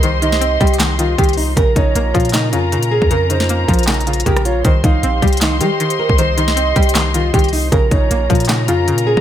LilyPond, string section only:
\new Staff \with { instrumentName = "String section" } { \time 4/4 \key c \phrygian \tempo 4 = 156 <g' c'' ees'' c'''>1 | <des' f' bes' bes''>1~ | <des' f' bes' bes''>1 | <g' c'' ees'' c'''>1~ |
<g' c'' ees'' c'''>1 | <des' f' bes' bes''>1 | }